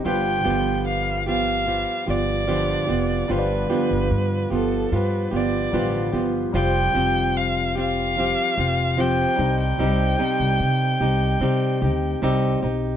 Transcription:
<<
  \new Staff \with { instrumentName = "Violin" } { \time 4/4 \key g \mixolydian \tempo 4 = 74 g''4 f''8 f''4 d''4. | b'4. a'8 b'8 d''4 r8 | g''4 f''8 f''4. g''8. g''16~ | g''2. r4 | }
  \new Staff \with { instrumentName = "Upright piano" } { \time 4/4 \key g \mixolydian <g f' b'>1 | <g f' c'' d''>2. <g f' b'>4 | <g f' c''>2.~ <g f' c''>8 <g ees' c''>8~ | <g ees' c''>2.~ <g ees' c''>8 r8 | }
  \new Staff \with { instrumentName = "Steel-string acoustic guitar" } { \time 4/4 \key g \mixolydian <g, d f b f' g'>8 <g, d f b f' g'>4 <f b f' g'>8 <f b f' g'>8 <f b f' g'>8 <g, d f b f' g'>8 <f b f' g'>8 | <g, d f b f' g'>8 <g, d f b f' g'>4 <f b f' g'>8 <f b f' g'>8 <f b f' g'>8 <g, d f b f' g'>8 <f b f' g'>8 | <f c' f' g'>8 <f c' f' g'>4 <c' f' g'>8 <f c' f' g'>8 <c' f' g'>8 <f c' f' g'>8 <c' ees' g'>8 | <c g c' ees' g'>8 <c g c' ees' g'>4 <c' ees' g'>8 <g c' ees' g'>8 <c' ees' g'>8 <c g c' ees' g'>8 <c' ees' g'>8 | }
  \new Staff \with { instrumentName = "Upright bass" } { \clef bass \time 4/4 \key g \mixolydian g,,8 g,,4.~ g,,16 r16 g,,4 f,,8 | g,,8 r16 g,,16 g,8 g,,8 g,8 g,,8 a,,8 g,,8 | f,,8 f,,4.~ f,,16 r16 f,,4 c,8 | c,8 r16 c,16 c8 c,8 c8 d,8 c,8 b,,8 | }
>>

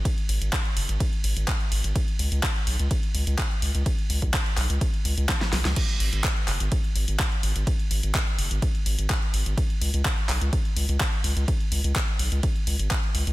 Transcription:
<<
  \new Staff \with { instrumentName = "Analog synth bass" } { \clef bass \time 4/4 \key cis \dorian \tempo 4 = 126 r8 gis,,16 gis,,16 r8 fis,,16 gis,,16 r8 gis,,16 gis,,16 r8 gis,,16 gis,,16 | r8 cis,16 cis,16 r8 b,,16 cis,16 r8 cis,16 cis,16 r8 cis,16 cis,16 | r8 cis,16 cis,16 r8 b,,16 cis,16 r8 cis,16 cis,16 r8 b,,16 cis,16 | r8 gis,,16 gis,,16 r8 fis,,16 gis,,16 r8 gis,,16 gis,,16 r8 gis,,16 gis,,16 |
r8 gis,,16 gis,,16 r8 fis,,16 gis,,16 r8 gis,,16 gis,,16 r8 gis,,16 gis,,16 | r8 cis,16 cis,16 r8 b,,16 cis,16 r8 cis,16 cis,16 r8 cis,16 cis,16 | r8 cis,16 cis,16 r8 b,,16 cis,16 r8 cis,16 gis,,16 r8 cis,16 cis,16 | }
  \new DrumStaff \with { instrumentName = "Drums" } \drummode { \time 4/4 <hh bd cymr>16 hh16 hho16 hh16 <hc hh bd cymr>16 hh16 hho16 hh16 <hh bd cymr>16 hh16 hho16 hh16 <hc hh bd cymr>16 hh16 hho16 hh16 | <hh bd cymr>16 hh16 hho16 hh16 <hc hh bd cymr>16 hh16 hho16 hh16 <hh bd cymr>16 hh16 hho16 hh16 <hc hh bd cymr>16 hh16 hho16 hh16 | <hh bd cymr>16 hh16 hho16 <hh bd>16 <hc hh bd cymr>16 hh16 <hc hho>16 hh16 <hh bd cymr>16 hh16 hho16 hh16 <hc hh bd cymr sn>16 <hh sn>16 <hho sn>16 <hh sn>16 | <cymc hh bd cymr>16 hh16 hho16 hh16 <hc hh bd cymr>16 hh16 <hc hho>16 hh16 <hh bd cymr>16 hh16 hho16 hh16 <hc hh bd cymr>16 hh16 hho16 hh16 |
<hh bd cymr>16 hh16 hho16 hh16 <hc hh bd cymr>16 hh16 hho16 hh16 <hh bd cymr>16 hh16 hho16 hh16 <hc hh bd cymr>16 hh16 hho16 hh16 | <hh bd cymr>16 hh16 hho16 hh16 <hc hh bd cymr>16 hh16 <hc hho>16 hh16 <hh bd cymr>16 hh16 hho16 hh16 <hc hh bd cymr>16 hh16 hho16 hh16 | <hh bd cymr>16 hh16 hho16 hh16 <hc hh bd cymr>16 hh16 hho16 hh16 <hh bd cymr>16 hh16 hho16 hh16 <hc hh bd cymr>16 hh16 hho16 hh16 | }
>>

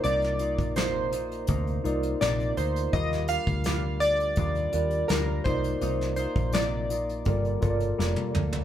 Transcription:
<<
  \new Staff \with { instrumentName = "Synth keys" } { \time 4/4 \key c \dorian \tempo 4 = 83 d''4 c''2 d''8 c''8 | ees''8 f''4 d''4. bes'8 c''8~ | c''8 c''8 d''2~ d''8 r8 | }
  \new Staff \with { instrumentName = "Tine electric piano" } { \time 4/4 \key c \dorian <ees' f' bes' d''>4. r4 <ees' f' bes' d''>4. | <f' g' bes' f''>2 r8 <f' g' bes' d''>4 <ees' f' bes' d''>8~ | <ees' f' bes' d''>4. r8 <f' a' bes' d''>8 <f' a' bes' cis'' d''>4. | }
  \new Staff \with { instrumentName = "Clean electric guitar" } { \time 4/4 \key c \dorian <c bes ees' f'>8 <bes ees' f'>8 <c bes ees' f'>8 <bes ees' f'>8 <c bes ees' f'>8 <bes ees' f'>8 <c bes ees' f'>8 <bes ees' f'>8 | <ees g f'>8 <g d' f'>8 <g d' f'>8 <g d' f'>8 <ees g d' f'>8 <g d' f'>8 <g d' f'>8 <bes ees' f'>8 | <c bes ees' f'>8 <bes ees' f'>8 <c bes ees' f'>8 <bes ees' f'>8 <g bes f' a'>8 <bes f' a'>8 <g bes f' a'>8 <bes f' a'>8 | }
  \new Staff \with { instrumentName = "Picked electric bass" } { \clef bass \time 4/4 \key c \dorian c,8. bes,,4~ bes,,16 d,8 c,8 bes,,8 d,8 | ees,8. d,4~ d,16 ees,8 ees,8 d,8 c,8 | c,8. bes,,4~ bes,,16 g,,8 g,,8 f,,16 r16 d,8 | }
  \new DrumStaff \with { instrumentName = "Drums" } \drummode { \time 4/4 hh16 <hh sn>16 hh16 <hh bd>16 <hh sn>8 hh16 hh16 <hh bd>16 hh16 hh16 hh16 <hh sn>16 hh16 hh16 hh16 | <hh bd>16 sn16 hh16 <hh bd>16 <hh sn>8 hh16 hh16 <hh bd>16 hh16 hh16 hh16 <hh sn>8 <hh bd>16 hh16 | hh16 sn16 hh16 <hh bd>16 <hh sn>8 hh16 hh16 <hh bd>16 hh16 <hh bd>16 hh16 sn16 tommh16 toml16 tomfh16 | }
>>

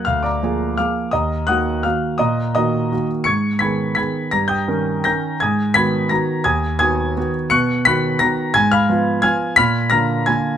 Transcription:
<<
  \new Staff \with { instrumentName = "Grand piano" } { \time 3/4 \key ees \minor \tempo 4 = 170 <f'' f'''>8 <d'' bes'' d'''>4. <f'' d''' f'''>4 | <ees'' bes'' ees'''>4 <ges'' ees''' ges'''>4 <f'' f'''>4 | <ees'' bes'' ees'''>4 <ees'' bes'' ees'''>4. r8 | <des''' aes''' des''''>4 <ces''' aes''' ces''''>4 <ces''' aes''' ces''''>4 |
<bes'' bes'''>8 <g'' ees''' g'''>4. <bes'' g''' bes'''>4 | <aes'' ees''' aes'''>4 <ces''' aes''' ces''''>4 <bes'' bes'''>4 | <aes'' ees''' aes'''>4 <aes'' ees''' aes'''>4. r8 | <des''' fis''' des''''>4 <b'' fis''' b'''>4 <bes'' bes'''>4 |
<aes'' aes'''>8 <f'' ces''' f'''>4. <aes'' f''' aes'''>4 | <ces''' f''' ces''''>4 <bes'' f''' bes'''>4 <aes'' aes'''>4 | }
  \new Staff \with { instrumentName = "Grand piano" } { \time 3/4 \key ees \minor d,4 <f bes aes'>4 <f bes aes'>4 | ees,4 <ees bes ges'>4 <ees bes ges'>4 | bes,4 <ees bes ges'>4 <ees bes ges'>4 | aes,4 <ees ces' aes'>4 <ees ces' aes'>4 |
g,4 <ees des' bes'>4 <ees des' bes'>4 | aes,4 <ees ces' ges'>4 <ees ces' ges'>4 | ees,4 <ees ces' ges'>4 <ees ces' ges'>4 | b,4 <dis b fis'>4 <dis b fis'>4 |
aes,4 <f ces' f'>4 <f ces' f'>4 | bes,4 <d bes f'>4 <d bes f'>4 | }
>>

